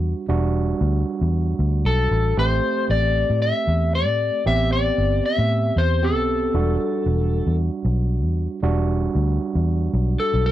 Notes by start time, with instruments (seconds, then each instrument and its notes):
Already playing: fingered electric bass E2, tine electric piano G3 D4 F#4
0.29 fingered electric bass E1, tine electric piano G3 D4 F#4
0.81 fingered electric bass D2
1.21 fingered electric bass E2
1.59 fingered electric bass D2
1.85 fingered electric bass B1, electric slide guitar A4
2.11 fingered electric bass A1
2.37 fingered electric bass A1, tine electric piano A3 C4 G4, electric slide guitar C5
2.90 fingered electric bass A1, electric slide guitar D5
3.30 fingered electric bass A2
3.42 electric slide guitar E5
3.68 fingered electric bass E2
3.95 electric slide guitar D5
4.07 fingered electric bass A2
4.46 fingered electric bass A1, tine electric piano B3 C4 G4, electric slide guitar E5
4.73 electric slide guitar D5
4.98 fingered electric bass G1
5.26 electric slide guitar E5
5.38 fingered electric bass A2
5.76 fingered electric bass E2, electric slide guitar C5
6.02 tine electric piano B3 C4 G4, electric slide guitar A4
6.16 fingered electric bass B1
6.54 fingered electric bass E1, tine electric piano G3 D4 F#4
7.06 fingered electric bass E1
7.47 fingered electric bass E2
7.85 fingered electric bass B1
8.24 fingered electric bass E2
8.63 fingered electric bass E1, tine electric piano G3 D4 F#4
9.15 fingered electric bass D2
9.55 fingered electric bass E2
9.94 fingered electric bass B1
10.20 electric slide guitar A4
10.34 fingered electric bass B1
10.46 electric slide guitar B4